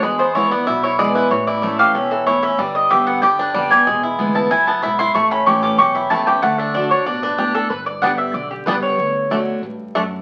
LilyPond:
<<
  \new Staff \with { instrumentName = "Mandolin" } { \time 4/4 \key d \major \tempo 4 = 188 b'8 c''8 cis''8 d''8 e''8 cis''8 d''8 b'8 | cis''8 d''8 e''8 f''8 e''8 a'8 cis''8 e''8 | d''8 ees''8 e''8 fis''8 g''8 b'8 d''8 gis''8~ | gis''8 r4 a''8 gis''8 a''8 b''8 c'''8 |
cis'''8 b''8 cis'''8 d'''8 cis'''8 b''8 a''8 g''8 | fis''8 e''8 d''8 cis''8 d''8 b'8 g'8 a'8 | b'8 d''8 fis''8 e''8 d''8 g'8 b'8 cis''8~ | cis''2 r2 | }
  \new Staff \with { instrumentName = "Five-string banjo" } { \time 4/4 \key d \major gis8 b8 e'8 b8 e'8 e'8 gis8 e'8 | e8 e'8 a8 g'8 cis'8 e8 e'8 cis'8 | g4 g'8 b8 g'8 d'8 g8 g'8 | gis8 e'8 b8 e'8 e'8 b8 e'8 e'8 |
a8 cis'8 g'8 cis'8 g'8 e'8 a8 g'8 | a8 d'8 d'8 d'8 d'8 d'8 d'8 d'8 | r4 <g b d'>8 r4. <g b d'>8 r8 | r4 <a d'>8 r4. <a d'>8 r8 | }
  \new Staff \with { instrumentName = "Steel-string acoustic guitar" } { \clef bass \time 4/4 \key d \major << { r4 <e gis b e'>8 <b e'>8 r4 <e gis b e'>4 | r4 <e a cis' e'>4 r2 | r4 <d g b g'>4 r4 <d g b g'>8 <b g'>8 | r4 <e gis b e'>4 r2 |
r4 <e a cis' e'>4 r4 <e a cis' e'>8 <cis' e'>8 | r4 <d a d' fis'>8 <d' fis'>8 r2 | r4 <d g b g'>4 r4 <g b g'>4 | r4 <d a d' fis'>4 r2 | } \\ { e,2 b,2 | a,2 b,4 a,4 | g,2 d2 | e,2 fis,4 gis,4 |
a,2 e,2 | d2 b,4 a,4 | g,2 d2 | d2 g,4 fis,4 | } >> }
  \new Staff \with { instrumentName = "Upright bass" } { \clef bass \time 4/4 \key d \major e,2 b,,2 | a,,2 e,,2 | g,,2 g,,4 fis,,4 | e,,4 d,4 cis,4 b,,4 |
a,,4 a,,4 b,,4 cis,4 | d,2 a,,2 | g,,2 b,,4 cis,4 | d,2 a,,2 | }
>>